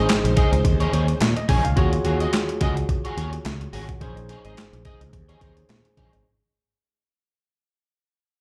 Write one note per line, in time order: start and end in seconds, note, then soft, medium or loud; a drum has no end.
0.00 1.73 C#3 medium
0.00 1.73 G#3 medium
0.00 1.17 C#4 medium
0.00 1.17 D#4 medium
0.00 1.75 D#4 medium
0.00 1.17 G#4 medium
0.00 1.18 C5 medium
0.00 1.75 C5 medium
0.09 snare loud
0.09 clap medium
0.09 closed hi-hat medium
0.24 0.33 A#1 medium
0.24 muted clean electric guitar stroke soft
0.24 closed hi-hat medium
0.36 0.53 D#4 medium
0.36 0.52 G#4 medium
0.36 0.52 D#5 loud
0.36 kick medium
0.36 closed hi-hat medium
0.52 0.61 C#2 loud
0.52 muted clean electric guitar stroke soft
0.52 closed hi-hat medium
0.65 0.86 D#2 loud
0.65 muted clean electric guitar stroke soft
0.65 kick loud
0.65 closed hi-hat loud
0.80 0.91 D#4 medium
0.80 0.92 G#4 medium
0.80 0.93 C#5 loud
0.80 closed hi-hat medium
0.92 1.14 D#2 medium
0.92 1.05 D#4 medium
0.92 1.06 G#4 medium
0.92 1.06 C#5 medium
0.92 closed hi-hat medium
1.08 muted clean electric guitar stroke medium
1.08 closed hi-hat medium
1.21 1.33 A#2 loud
1.21 snare loud
1.21 clap medium
1.21 closed hi-hat medium
1.36 1.48 D#5 medium
1.36 muted clean electric guitar stroke soft
1.36 closed hi-hat soft
1.48 1.61 A#1 medium
1.48 1.65 D#4 loud
1.48 1.64 G#4 loud
1.48 1.63 C#5 loud
1.48 1.64 G#5 medium
1.48 kick medium
1.48 open hi-hat medium
1.64 1.74 C#2 medium
1.64 1.91 F5 medium
1.64 muted clean electric guitar stroke soft
1.64 closed hi-hat medium
1.76 1.98 D#2 loud
1.76 3.97 F4 medium
1.76 1.93 F#4 medium
1.76 3.97 F#4 medium
1.76 3.97 G#4 medium
1.76 1.92 G#4 medium
1.76 3.98 C#5 medium
1.76 1.91 C#5 loud
1.76 kick loud
1.76 closed hi-hat medium
1.92 muted clean electric guitar stroke soft
1.92 closed hi-hat medium
2.05 2.26 D#2 loud
2.05 2.17 F#4 medium
2.05 2.18 G#4 medium
2.05 2.18 C#5 medium
2.05 closed hi-hat medium
2.20 2.31 F#4 medium
2.20 2.31 G#4 medium
2.20 2.30 D#5 medium
2.20 closed hi-hat medium
2.33 snare loud
2.33 clap medium
2.33 closed hi-hat medium
2.48 muted clean electric guitar stroke soft
2.48 closed hi-hat soft
2.61 2.82 C#2 medium
2.61 2.77 F#4 medium
2.61 2.76 G#4 medium
2.61 2.76 D#5 medium
2.61 kick medium
2.61 closed hi-hat medium
2.76 muted clean electric guitar stroke soft
2.76 closed hi-hat medium
2.89 muted clean electric guitar stroke medium
2.89 kick loud
2.89 closed hi-hat loud
3.05 3.16 F#4 medium
3.05 3.17 G#4 medium
3.05 3.17 C#5 medium
3.05 closed hi-hat medium
3.17 3.38 D#2 medium
3.17 3.30 F#4 medium
3.17 3.30 G#4 medium
3.17 3.30 C#5 medium
3.17 closed hi-hat medium
3.33 muted clean electric guitar stroke soft
3.33 closed hi-hat medium
3.45 3.66 C#2 medium
3.45 snare loud
3.45 clap medium
3.45 closed hi-hat loud
3.61 muted clean electric guitar stroke medium
3.61 closed hi-hat soft
3.73 3.94 G#1 medium
3.73 3.89 F#4 medium
3.73 3.89 G#4 medium
3.73 3.88 C#5 medium
3.73 open hi-hat medium
3.89 muted clean electric guitar stroke soft
3.89 kick loud
3.89 closed hi-hat soft
4.00 4.34 A#1 loud
4.00 5.38 C#4 medium
4.00 5.38 D#4 medium
4.00 4.17 D#4 medium
4.00 5.39 G#4 medium
4.00 4.17 G#4 medium
4.00 5.39 C5 medium
4.00 4.16 C#5 medium
4.00 kick loud
4.00 closed hi-hat medium
4.17 muted clean electric guitar stroke soft
4.17 closed hi-hat medium
4.29 4.42 D#4 medium
4.29 4.42 G#4 medium
4.29 4.42 C#5 medium
4.29 closed hi-hat medium
4.45 4.54 G#1 medium
4.45 4.55 D#4 medium
4.45 4.55 G#4 medium
4.45 4.55 D#5 medium
4.45 closed hi-hat medium
4.57 snare loud
4.57 clap medium
4.57 closed hi-hat medium
4.73 4.82 A#1 medium
4.73 muted clean electric guitar stroke soft
4.73 closed hi-hat soft
4.85 5.01 D#4 medium
4.85 5.01 G#4 medium
4.85 5.01 D#5 loud
4.85 kick medium
4.85 closed hi-hat medium
5.01 5.10 C#2 medium
5.01 muted clean electric guitar stroke soft
5.01 closed hi-hat medium
5.13 5.34 D#2 medium
5.13 muted clean electric guitar stroke soft
5.13 kick loud
5.13 closed hi-hat loud
5.29 5.40 D#4 medium
5.29 5.41 G#4 medium
5.29 5.41 C#5 medium
5.29 closed hi-hat medium
5.41 5.62 D#2 medium
5.41 6.25 C#4 medium
5.41 5.54 D#4 medium
5.41 6.25 D#4 medium
5.41 6.26 G#4 medium
5.41 5.54 G#4 medium
5.41 6.26 C5 medium
5.41 5.54 C#5 medium
5.41 kick medium
5.41 closed hi-hat medium
5.57 muted clean electric guitar stroke medium
5.57 closed hi-hat medium
5.69 5.81 A#2 medium
5.69 snare loud
5.69 clap medium
5.69 closed hi-hat medium
5.85 muted clean electric guitar stroke soft
5.85 closed hi-hat soft
5.97 6.09 A#1 medium
5.97 6.13 D#4 medium
5.97 6.13 G#4 medium
5.97 6.12 C#5 loud
5.97 kick medium
5.97 closed hi-hat medium
6.13 6.22 G#1 medium
6.13 muted clean electric guitar stroke soft
6.13 closed hi-hat medium